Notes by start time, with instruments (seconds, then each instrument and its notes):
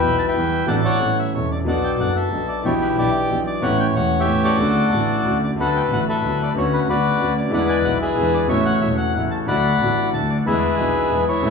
Already playing: bandoneon B4 E5 G5
0.00 grand piano B1 B2 E3 G3 B3, double bass B1
0.04 grand piano G4
0.19 bandoneon A5
0.28 bandoneon B4 E5 G5
0.33 grand piano E2 E3 G3 B3 G4, double bass E2
0.65 grand piano A1 A2 F#3 A3 D4, double bass A1, bandoneon A4 D5 F#5
0.70 grand piano A4
0.85 bandoneon C#5 F#5
0.99 grand piano A1 A2 G3 C#4 E4, double bass A1
1.04 grand piano A4
1.19 bandoneon E5
1.33 double bass E1, grand piano E1 E2 G3 C#4 E4, bandoneon C#5
1.37 grand piano A4
1.51 bandoneon D5
1.64 grand piano B1 B2 F#3 B3 D4 A4, double bass B1, bandoneon A4 D5 F#5
1.84 bandoneon G5
1.97 grand piano F#1 F#2 F#3 B3 D4, double bass F#1, bandoneon F#5
2.02 grand piano A4
2.16 bandoneon A4 E5
2.30 grand piano B1 B2 F#3 B3 D4, double bass B1
2.34 grand piano A4
2.48 bandoneon D5
2.63 double bass B1, grand piano B1 B2 E3 B3 D4, bandoneon E4 G4 C#5
2.67 grand piano G4
2.82 bandoneon B4
2.96 grand piano B1 B2 E3 B3 D4 G4, double bass B1, bandoneon G4 D5
3.28 grand piano B1 B2 E3 B3 D4, double bass B1
3.32 grand piano G4
3.47 bandoneon D5
3.60 grand piano A1 A2 E3 A3 C#4, double bass A1, bandoneon C#5 F#5
3.64 grand piano G4
3.80 bandoneon G5
3.92 grand piano E1 E2 E3 A3 C#4, double bass E1, bandoneon C#5
3.96 grand piano G4, bandoneon F#5
4.20 bandoneon G4 C#5 E5
4.25 double bass A1, grand piano A1 A2 E3 A3 C#4 G4
4.44 bandoneon F#4 A4 D5
4.58 double bass D2, grand piano D2 C#3 D3 A3 F#4
4.90 grand piano A1 A2 C#3 D3 A3, double bass A1
4.94 grand piano F#4
5.24 double bass D2, grand piano D2 D3 A3 C#4 F#4
5.44 bandoneon D5
5.56 double bass D2, grand piano D2 D3 A3 B3, bandoneon F#3 B3 D4 A4
5.60 grand piano F#4, bandoneon B4 F#5
5.76 bandoneon G5
5.89 double bass A1, grand piano A1 A2 D3 A3 B3 F#4, bandoneon F#3 B3 D4
5.93 bandoneon F#5
6.09 bandoneon A4 B4 E5
6.22 double bass D2, grand piano D2 D3 A3 B3, bandoneon F#3 B3 D4
6.27 grand piano F#4
6.43 bandoneon D5
6.53 grand piano D2 D3 B3 C#4, double bass D2, bandoneon B3 C#4
6.57 grand piano F#4, bandoneon F#4 C#5
6.73 bandoneon B4
6.87 grand piano D2 C#3 D3 B3 F#4, double bass D2, bandoneon C#3 B3 F#4 B4 D5
7.18 grand piano D2 D3 B3 C#4 F#4, double bass D2, bandoneon B3 C#4
7.37 bandoneon D5
7.49 grand piano E2 D3 E3 G#3 B3, double bass E2
7.53 bandoneon G#3 D4 E4 B4 D5 F#5, grand piano E4
7.69 bandoneon G#5
7.83 double bass B1, grand piano B1 B2 D3 G#3 B3, bandoneon G#3 D4 E4 F#5
7.87 grand piano E4
8.02 bandoneon G#4 B4 E5
8.15 grand piano E2 D3 E3 G#3 B3 E4, double bass E2, bandoneon G#3 D4 E4
8.34 bandoneon D5
8.47 grand piano A1 A2 C#3 F#3 A3, double bass A1, bandoneon A3 C#4 F#4 C#5 E5
8.51 grand piano E4
8.66 bandoneon F#5
8.80 grand piano E1 E2 C#3 F#3 A3 E4, double bass E1, bandoneon A3 C#4 F#4 E5
8.97 bandoneon F#5
9.13 double bass A1, grand piano A1 A2 C#3 F#3 A3, bandoneon A3 C#4 F#4 F#5
9.18 grand piano E4
9.31 bandoneon A5
9.46 double bass D2, grand piano D2 D3 F#3 A3 F#4, bandoneon A3 D4 F#4 D5 F#5 B5
9.80 double bass A1, grand piano A1 A2 D3 F#3 A3, bandoneon A3 D4 F#4
9.84 grand piano F#4
10.13 double bass D2, grand piano D2 D3 F#3 A3, bandoneon A3 D4 F#4 A5
10.17 grand piano F#4
10.30 bandoneon D5
10.46 double bass E2, grand piano E2 D3 E3 G#3 B3 E4, bandoneon G#3 D4 E4 G#4 B4 E5
10.77 grand piano B1 B2 D3 G#3 B3 E4, double bass B1, bandoneon G#3 D4 E4
11.10 grand piano E2 D3 E3 G#3 B3 E4, double bass E2, bandoneon G#3 D4 E4
11.29 bandoneon E4 C#5
11.42 grand piano A1 A2 C#3 A3 B3, double bass A1, bandoneon B3 C#4 A4
11.46 grand piano E4